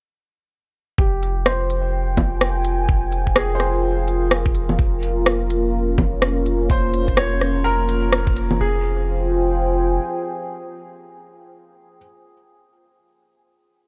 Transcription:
0.98 F1 F4 G4, kick
1.16 A#4 G5
1.23 closed hi-hat
1.46 C5, cross-stick
1.69 G#5, closed hi-hat
2.17 kick, closed hi-hat, low bongo
2.41 cross-stick
2.65 closed hi-hat
2.89 kick
3.12 closed hi-hat
3.27 kick
3.36 G#4, cross-stick
3.55 C5
3.60 cross-stick, closed hi-hat
4.08 closed hi-hat
4.31 cross-stick
4.46 kick
4.55 closed hi-hat
4.69 low bongo
4.79 F1 A#3, kick
5.03 closed hi-hat
5.25 C#4, cross-stick
5.50 closed hi-hat
5.98 kick, closed hi-hat, low bongo
6.22 cross-stick
6.46 closed hi-hat
6.70 C5, kick
6.94 closed hi-hat
7.08 kick
7.17 C#5, cross-stick
7.41 cross-stick, closed hi-hat
7.64 A#4
7.89 closed hi-hat
8.12 cross-stick
8.27 kick
8.37 closed hi-hat
8.51 low bongo
8.60 F1 F4 G#4
8.67 C5
8.76 G5
8.82 G#5

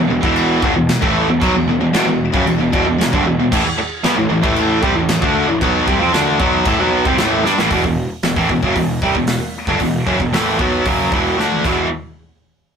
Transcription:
0.10 E1 E2 B2
0.23 E1 E2 B2 E3, kick
0.36 china
0.62 G1 G2 D3, kick
0.75 E1 E2 B2
0.89 snare, china
1.01 A1 A2 E3 A3, kick
1.28 E1 E2 B2
1.42 B1 B2 F#3, kick, china
1.54 E1 E2 B2
1.68 E1 E2 B2
1.80 E1 E2 B2
1.93 E1 E2 B2, snare, china
2.06 E1 E2 B2
2.32 F#1 F#2 C#3, kick
2.46 E1 E2 B2, china
2.58 E1 E2 B2
2.72 E1 E2 B2, kick
2.85 E1 E2 B2
2.98 E1 E2 B2, snare, china
3.12 G1 G2 D3, kick
3.24 E1 E2 B2
3.37 E1 E2 B2
3.52 A1 A2 E3, kick, crash, china
3.65 muted overdriven electric guitar stroke, muted picked electric bass stroke, muted distorted electric guitar stroke
3.77 muted picked electric bass stroke, muted overdriven electric guitar stroke, muted distorted electric guitar stroke
4.04 E2 E3 B3, snare, china
4.17 A1 A2 E3
4.29 A1 A2 E3
4.43 A1 A2 E3 A3, kick
4.56 china
4.82 C2 C3 G3, kick
4.96 A1 A2 E3
5.09 snare, china
5.22 D2 D3 A3 D4, kick
5.47 A1 A2 E3
5.61 B1 B2 F#3 B3, kick, china
5.87 C2 C3 G3, kick
6.00 F2 F3 C4
6.13 D2 D3 A3 D4, snare, china
6.39 B1 B2 F#3 B3, kick
6.65 A1 A2 E3, kick, china
6.80 B1 B2 F#3 B3
7.05 C2 C3 G3, kick
7.18 A1 A2 E3 A3, snare, china
7.45 G2 G3 D4, snare
7.58 A1 A2 E3, snare
7.71 E1 E2 B2, kick, open hi-hat
7.84 E1 E2 B2, kick
8.23 E1 E2 B2, snare, open hi-hat
8.36 A1 A2 E3, kick
8.49 E1 E2 B2, kick
8.62 F#1 F#2 C#3, kick
8.76 E1 E2 B2, kick, open hi-hat
9.02 C2 C3 G3, kick
9.15 E1 E2 B2, kick
9.27 snare, open hi-hat
9.67 G1 G2 D3, kick
9.80 E1 E2 B2, kick, open hi-hat
10.06 F#1 F#2 C#3, kick
10.20 E1 E2 B2, kick
10.33 A1 A2 E3 A3, snare, open hi-hat
10.59 B1 B2 F#3 B3, kick
10.85 F#1 F#2 C#3 F#3, kick, open hi-hat
11.12 E1 E2 B2 E3, kick
11.38 D2 D3 A3 D4, snare
11.52 high tom
11.64 E1 E2 B2 E3, kick, crash

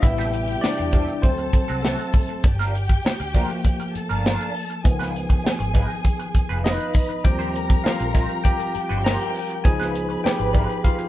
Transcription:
0.02 A1 C3 G3 B3 E4 G4 E5 G5, muted clean electric guitar stroke, kick, closed hi-hat
0.18 C4 G4 A4, snare, closed hi-hat
0.33 muted clean electric guitar stroke, closed hi-hat
0.48 muted clean electric guitar stroke, closed hi-hat
0.61 D4 D5, muted clean electric guitar stroke, muted fingered electric bass stroke, snare
0.77 E2, muted clean electric guitar stroke, closed hi-hat
0.93 C4 G4 A4, kick, closed hi-hat
1.07 muted clean electric guitar stroke, closed hi-hat
1.22 D2 F#3 A3 C4 A4 C5 A5, muted clean electric guitar stroke, kick, closed hi-hat
1.38 muted clean electric guitar stroke, closed hi-hat
1.53 kick, closed hi-hat
1.68 C2 C4 F#4 A4, closed hi-hat
1.82 A3 C4 F#4 A4, snare
1.99 closed hi-hat
2.12 muted clean electric guitar stroke, kick, open hi-hat
2.28 muted clean electric guitar stroke, closed hi-hat
2.44 G1 G4 G5, muted clean electric guitar stroke, kick, closed hi-hat
2.59 D4 F4 A#4, snare, closed hi-hat
2.75 muted clean electric guitar stroke, closed hi-hat
2.89 muted clean electric guitar stroke, kick, closed hi-hat
3.05 muted clean electric guitar stroke, muted fingered electric bass stroke, snare
3.20 D2, muted clean electric guitar stroke, closed hi-hat
3.34 F3 A3 A#3 D4 F4 A#4, kick, closed hi-hat
3.49 muted clean electric guitar stroke, closed hi-hat
3.65 muted clean electric guitar stroke, kick, closed hi-hat
3.80 muted clean electric guitar stroke, closed hi-hat
3.94 A4 A5, muted fingered electric bass stroke, closed hi-hat
4.09 G1 D4 F4 A#4, closed hi-hat
4.24 D4 F4 A#4, snare
4.41 closed hi-hat
4.54 muted clean electric guitar stroke, open hi-hat
4.70 muted clean electric guitar stroke, closed hi-hat
4.84 C#2 D#3 F3 B3 G#4 G#5, muted clean electric guitar stroke, kick, closed hi-hat
4.99 D#4 F4 B4, snare, closed hi-hat
5.15 muted clean electric guitar stroke, closed hi-hat
5.29 muted clean electric guitar stroke, kick, closed hi-hat
5.44 muted clean electric guitar stroke, muted fingered electric bass stroke, snare
5.59 G#1, muted clean electric guitar stroke, closed hi-hat
5.74 D#4 F4 B4, kick, closed hi-hat
5.89 muted clean electric guitar stroke, closed hi-hat
6.04 muted clean electric guitar stroke, kick, closed hi-hat
6.19 muted clean electric guitar stroke, closed hi-hat
6.35 muted fingered electric bass stroke, kick, closed hi-hat
6.49 F1 D#4 F4 B4, closed hi-hat
6.64 D#4 F4 B4 D#5 B5, snare
6.80 closed hi-hat
6.94 muted clean electric guitar stroke, kick, open hi-hat
7.09 muted clean electric guitar stroke, closed hi-hat
7.24 D#2 F3 G3 C4 G4 A#4 G5 A#5, muted clean electric guitar stroke, kick, closed hi-hat
7.39 D#4 G4 C5, closed hi-hat
7.54 muted clean electric guitar stroke, closed hi-hat
7.69 muted clean electric guitar stroke, kick, closed hi-hat
7.84 F4 F5, muted clean electric guitar stroke, muted fingered electric bass stroke, snare
8.00 A#1, muted clean electric guitar stroke, closed hi-hat
8.14 D#4 G4 C5, kick, closed hi-hat
8.29 muted clean electric guitar stroke, closed hi-hat
8.44 G4 G5, muted clean electric guitar stroke, kick, closed hi-hat
8.59 muted clean electric guitar stroke, closed hi-hat
8.74 G4 G5, muted fingered electric bass stroke, closed hi-hat
8.89 G1 D#4 G4 C5, closed hi-hat
9.04 D#4 G4 A#4 C5 A#5, snare
9.21 closed hi-hat
9.35 muted clean electric guitar stroke, open hi-hat
9.50 muted clean electric guitar stroke, closed hi-hat
9.64 C#2 F3 B3 D#4 G#4 B4 G#5 B5, muted clean electric guitar stroke, kick, closed hi-hat
9.80 D#4 F4 B4, snare, closed hi-hat
9.94 muted clean electric guitar stroke, closed hi-hat
10.09 muted clean electric guitar stroke, closed hi-hat
10.24 G4 G5, muted clean electric guitar stroke, muted fingered electric bass stroke, snare
10.38 G#1, muted clean electric guitar stroke, closed hi-hat
10.53 D#4 F4 B4, kick, closed hi-hat
10.68 muted clean electric guitar stroke, closed hi-hat
10.84 F4 F5, muted clean electric guitar stroke, kick, closed hi-hat
10.99 muted clean electric guitar stroke, closed hi-hat

